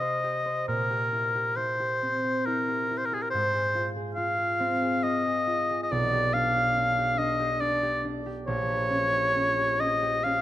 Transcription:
0.00 0.72 C3 soft
0.00 0.22 G4 soft
0.00 0.45 C5 soft
0.00 0.68 D#5 medium
0.24 0.89 G4 soft
0.46 4.36 C5 soft
0.68 3.36 A#2 soft
0.68 1.57 A#4 medium
0.90 1.34 G4 soft
1.13 1.56 E4 soft
1.35 1.78 G4 soft
1.56 2.46 E4 soft
1.56 2.47 C5 medium
1.80 2.23 G4 soft
2.02 4.59 C4 soft
2.24 2.67 G4 soft
2.45 2.89 E4 soft
2.45 2.99 A#4 medium
2.69 3.11 G4 soft
2.91 3.37 E4 soft
2.97 3.07 C5 medium
3.05 3.16 A#4 medium
3.12 3.36 G4 soft
3.12 3.23 G#4 medium
3.22 3.30 A#4 medium
3.30 5.94 G#2 soft
3.30 3.89 C5 medium
3.54 3.95 G#4 soft
3.75 4.16 F4 soft
3.96 4.37 G#4 soft
4.15 5.02 F4 soft
4.15 5.05 F5 medium
4.38 4.81 G#4 soft
4.60 5.94 C4 soft
4.82 5.24 G#4 soft
5.03 5.46 F4 soft
5.03 5.83 D#5 medium
5.26 5.69 G#4 soft
5.47 8.51 F4 soft
5.70 5.94 G#4 soft
5.83 5.93 D#5 medium
5.91 8.52 B1 medium
5.91 6.35 D5 medium
6.13 6.55 G4 soft
6.34 6.76 D4 soft
6.34 7.20 F5 medium
6.56 6.97 G4 soft
6.77 7.17 D4 soft
6.98 7.38 G4 soft
7.18 7.60 D4 soft
7.18 7.62 D#5 medium
7.40 7.81 G4 soft
7.60 8.03 D4 soft
7.60 8.04 D5 medium
7.83 8.25 G4 soft
8.04 8.52 D4 soft
8.26 8.68 G4 soft
8.47 10.42 A#1 medium
8.47 9.82 C#5 medium
8.69 9.12 G4 soft
8.90 9.34 C#4 soft
9.13 9.56 G4 soft
9.35 9.79 C#4 soft
9.58 10.01 G4 soft
9.80 10.24 C#4 soft
9.80 10.25 D#5 medium
10.02 10.42 G4 soft
10.24 10.42 C#4 soft
10.24 10.42 F5 medium

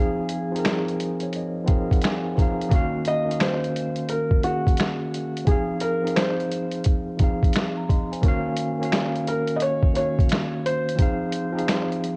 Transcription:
0.00 0.46 F3 loud
0.00 0.47 C4 medium
0.00 0.48 D#4 medium
0.00 0.49 G#4 medium
0.00 2.33 G#4 medium
0.00 0.49 F5 loud
0.29 closed hi-hat medium
0.52 1.61 F3 medium
0.52 1.62 C4 medium
0.52 1.63 D#4 medium
0.56 1.63 G#4 medium
0.56 1.64 A#4 medium
0.56 closed hi-hat soft
0.65 finger snap medium
0.65 snare loud
0.65 closed hi-hat medium
0.88 closed hi-hat soft
1.00 1.20 C5 medium
1.00 closed hi-hat medium
1.20 1.33 C#5 medium
1.20 closed hi-hat soft
1.33 1.67 D#5 medium
1.33 closed hi-hat medium
1.64 2.31 F3 medium
1.64 2.32 C4 medium
1.64 2.33 D#4 medium
1.64 1.89 F5 medium
1.64 kick medium
1.64 closed hi-hat medium
1.69 2.34 G#4 medium
1.69 2.35 A#4 medium
1.91 2.02 F#5 medium
1.91 kick medium
1.91 closed hi-hat soft
2.01 2.35 G#5 medium
2.01 finger snap medium
2.01 snare loud
2.01 closed hi-hat medium
2.35 2.69 F3 medium
2.35 2.70 C4 medium
2.35 2.70 D#4 medium
2.35 2.70 A#5 medium
2.35 kick medium
2.35 closed hi-hat medium
2.40 2.71 G#4 medium
2.40 2.72 F5 medium
2.61 closed hi-hat soft
2.69 3.22 D#3 loud
2.69 3.23 A#3 loud
2.69 3.24 C#4 loud
2.69 kick loud
2.69 closed hi-hat medium
2.74 3.24 F#4 loud
2.74 3.25 F5 loud
3.05 3.42 D#5 loud
3.05 closed hi-hat medium
3.25 4.36 D#3 medium
3.25 4.36 A#3 medium
3.25 4.37 C#4 medium
3.30 4.38 F#4 medium
3.30 4.39 F5 medium
3.30 closed hi-hat soft
3.40 4.12 C5 medium
3.40 finger snap medium
3.40 snare loud
3.40 closed hi-hat medium
3.64 closed hi-hat soft
3.76 closed hi-hat medium
3.96 closed hi-hat soft
4.09 4.45 A#4 medium
4.09 closed hi-hat medium
4.31 kick medium
4.40 5.40 D#3 medium
4.40 5.41 A#3 medium
4.40 5.42 C#4 medium
4.40 5.50 F#4 medium
4.40 closed hi-hat medium
4.45 5.42 F#4 medium
4.45 5.43 G#4 medium
4.67 kick medium
4.67 closed hi-hat soft
4.77 finger snap medium
4.77 snare loud
4.77 closed hi-hat medium
5.14 closed hi-hat medium
5.37 closed hi-hat soft
5.45 5.98 F3 medium
5.45 5.99 C4 medium
5.45 5.99 D#4 medium
5.45 5.82 G#4 medium
5.45 kick loud
5.45 closed hi-hat medium
5.50 6.00 G#4 medium
5.50 6.01 F5 loud
5.80 6.17 A#4 medium
5.80 closed hi-hat medium
6.01 7.11 F3 medium
6.01 7.12 C4 medium
6.01 7.13 D#4 medium
6.06 7.14 G#4 medium
6.06 7.15 F5 medium
6.06 closed hi-hat soft
6.16 6.81 C5 medium
6.16 finger snap medium
6.16 snare loud
6.16 closed hi-hat medium
6.40 closed hi-hat soft
6.51 closed hi-hat medium
6.71 closed hi-hat soft
6.84 kick medium
6.84 closed hi-hat medium
7.17 7.84 F3 medium
7.17 7.84 C4 medium
7.17 7.85 D#4 medium
7.17 kick medium
7.17 closed hi-hat medium
7.22 7.86 G#4 medium
7.22 7.56 F5 medium
7.43 kick medium
7.43 closed hi-hat soft
7.53 finger snap medium
7.53 snare loud
7.53 closed hi-hat medium
7.77 7.88 A#5 medium
7.89 8.11 D#5 medium
7.89 8.10 C6 medium
7.89 kick medium
7.89 closed hi-hat medium
8.12 8.45 C5 soft
8.12 8.44 G#5 medium
8.12 closed hi-hat soft
8.21 8.74 D#3 loud
8.21 8.75 A#3 loud
8.21 8.76 C#4 loud
8.21 kick loud
8.21 closed hi-hat medium
8.26 8.76 F#4 loud
8.26 8.77 F5 loud
8.57 closed hi-hat medium
8.78 9.88 D#3 medium
8.78 9.89 A#3 medium
8.78 9.90 C#4 medium
8.83 9.91 F#4 medium
8.83 9.91 F5 medium
8.83 closed hi-hat soft
8.92 finger snap medium
8.92 snare loud
8.92 closed hi-hat medium
9.16 closed hi-hat soft
9.27 9.55 A#4 medium
9.27 closed hi-hat medium
9.48 closed hi-hat soft
9.56 9.61 D#5 medium
9.56 closed hi-hat medium
9.62 9.94 C#5 loud
9.83 kick medium
9.93 10.92 D#3 medium
9.93 10.93 A#3 medium
9.93 10.94 C#4 medium
9.93 10.67 C#5 medium
9.93 closed hi-hat medium
9.98 10.95 F#4 medium
9.98 10.96 F5 medium
10.19 kick medium
10.19 closed hi-hat soft
10.29 finger snap medium
10.29 snare loud
10.29 closed hi-hat medium
10.66 12.16 C5 loud
10.66 closed hi-hat medium
10.89 closed hi-hat medium
10.96 11.49 F3 loud
10.96 11.50 C4 loud
10.96 11.51 D#4 medium
10.96 kick loud
10.96 closed hi-hat medium
11.01 11.52 G#4 medium
11.01 11.52 F5 loud
11.32 closed hi-hat medium
11.52 12.16 F3 medium
11.52 12.16 C4 medium
11.52 12.16 D#4 medium
11.57 12.16 G#4 medium
11.57 12.16 F5 medium
11.57 closed hi-hat soft
11.68 finger snap medium
11.68 snare medium
11.68 closed hi-hat medium
11.92 closed hi-hat soft
12.04 closed hi-hat medium

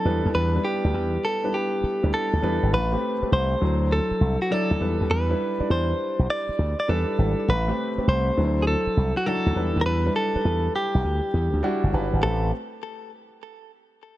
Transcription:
0.00 0.34 A4 medium
0.05 0.20 E2 loud
0.05 0.43 G3 medium
0.05 0.43 B3 medium
0.05 0.43 D4 medium
0.05 0.43 E4 medium
0.05 0.43 B4 medium
0.25 0.32 D#2 medium
0.35 0.57 E2 loud
0.35 0.65 B4 loud
0.55 1.20 G3 medium
0.55 1.20 B3 medium
0.55 1.20 D4 medium
0.55 1.20 E4 medium
0.55 1.20 B4 medium
0.65 1.26 G4 loud
0.84 0.94 D2 medium
0.94 1.16 E2 medium
1.25 1.55 A4 medium
1.43 1.84 G3 medium
1.43 1.84 B3 medium
1.43 1.84 D4 medium
1.43 1.84 E4 medium
1.43 1.85 B4 medium
1.54 2.39 G4 medium
1.83 muted slap bass stroke medium
2.03 2.11 D2 medium
2.03 2.35 G3 medium
2.03 2.36 B3 medium
2.03 2.36 D4 medium
2.03 2.36 E4 medium
2.03 2.36 B4 medium
2.14 2.74 A4 medium
2.33 2.40 D2 medium
2.42 2.57 E2 medium
2.42 2.72 G3 medium
2.42 2.72 B3 medium
2.42 2.72 D4 medium
2.42 2.73 E4 medium
2.42 2.73 B4 loud
2.63 2.70 G#1 medium
2.72 2.94 A1 loud
2.72 3.33 B4 loud
2.92 3.12 A3 medium
2.92 3.12 C4 medium
2.92 3.13 G4 medium
2.92 3.13 B4 medium
3.22 3.61 A3 medium
3.22 3.61 C4 medium
3.22 3.62 G4 medium
3.22 3.62 B4 medium
3.22 muted slap bass stroke soft
3.32 3.54 C2 medium
3.32 3.94 C5 medium
3.61 3.98 D2 loud
3.61 4.37 F#3 medium
3.61 4.37 D4 medium
3.61 4.37 E4 medium
3.61 4.37 C5 medium
3.92 4.41 A4 loud
4.11 muted slap bass stroke soft
4.21 4.36 C2 loud
4.42 4.52 F#4 medium
4.50 4.76 F#3 medium
4.50 4.76 D4 medium
4.50 4.76 E4 medium
4.50 5.12 A4 loud
4.50 4.76 D5 loud
4.71 4.78 D2 medium
4.80 4.95 E2 loud
4.80 5.18 G3 medium
4.80 5.18 D4 medium
4.80 5.18 E4 medium
4.80 5.19 B4 medium
5.00 5.08 D#2 medium
5.10 5.32 E2 loud
5.10 5.71 B4 loud
5.30 5.50 G3 medium
5.30 5.50 D4 medium
5.30 5.50 E4 medium
5.30 5.51 B4 medium
5.59 6.49 G3 medium
5.59 6.49 D4 medium
5.59 6.50 E4 medium
5.59 6.50 D5 medium
5.59 muted slap bass stroke medium
5.70 5.92 E2 medium
5.70 6.30 C5 medium
6.19 6.26 B1 loud
6.30 6.79 D5 loud
6.49 muted slap bass stroke soft
6.59 6.73 D2 medium
6.80 6.89 D5 loud
6.88 7.03 E2 loud
6.88 7.13 G3 medium
6.88 7.13 D4 medium
6.88 7.14 E4 medium
6.88 7.50 A4 loud
6.88 7.14 B4 loud
7.18 7.33 G#1 medium
7.18 7.48 G3 medium
7.18 7.48 D4 medium
7.18 7.48 E4 medium
7.18 7.48 B4 medium
7.48 7.70 A1 loud
7.48 8.08 B4 loud
7.68 7.88 A3 medium
7.68 7.88 C4 medium
7.68 7.88 G4 medium
7.68 7.88 B4 medium
7.98 8.37 A3 medium
7.98 8.37 C4 medium
7.98 8.37 G4 medium
7.98 8.37 B4 medium
7.98 muted slap bass stroke soft
8.07 8.29 C2 medium
8.07 8.64 C5 medium
8.37 8.74 D2 loud
8.37 9.12 F#3 medium
8.37 9.12 D4 medium
8.37 9.13 E4 medium
8.37 8.46 B4 medium
8.45 9.16 C5 medium
8.62 8.67 G#4 medium
8.67 9.17 A4 loud
8.87 muted slap bass stroke soft
8.97 9.11 C2 medium
9.17 9.26 F#4 medium
9.26 9.51 F#3 medium
9.26 9.51 D4 medium
9.26 9.51 E4 medium
9.26 9.52 F#4 loud
9.26 9.83 A4 medium
9.46 9.53 D2 medium
9.56 9.70 E2 loud
9.56 9.93 G3 medium
9.56 9.94 D4 medium
9.56 9.94 E4 medium
9.56 9.94 B4 medium
9.76 9.83 D#2 medium
9.81 9.86 A#4 medium
9.86 10.08 E2 loud
9.86 10.16 B4 loud
10.05 10.25 G3 medium
10.05 10.26 D4 medium
10.05 10.26 E4 medium
10.05 10.26 B4 medium
10.16 10.75 A4 loud
10.35 11.25 G3 medium
10.35 11.25 D4 medium
10.35 11.25 E4 medium
10.35 11.25 B4 medium
10.35 muted slap bass stroke soft
10.45 10.67 E2 medium
10.76 11.90 G4 medium
10.94 11.02 B1 medium
11.04 11.19 D2 medium
11.34 11.48 E2 medium
11.53 11.61 D2 medium
11.63 11.88 G3 loud
11.63 11.88 D4 medium
11.63 11.88 E4 medium
11.63 11.89 F#4 loud
11.83 11.91 F#1 medium
11.93 12.08 G1 medium
11.93 12.23 G3 medium
11.93 12.23 D4 medium
11.93 12.23 E4 medium
11.93 12.22 B4 loud
12.13 12.20 G#1 medium
12.23 12.50 A1 loud
12.23 12.51 A3 medium
12.23 12.51 C4 medium
12.23 12.51 G4 medium
12.23 12.51 A4 medium
12.23 12.51 B4 medium

